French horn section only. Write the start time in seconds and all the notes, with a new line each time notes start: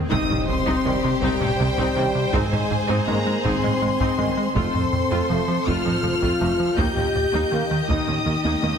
0.10 D#4
0.48 C4
1.22 G3
2.33 G#3
3.07 A#3
3.44 C4
4.55 C4
5.67 F4
6.77 G4
7.88 D#4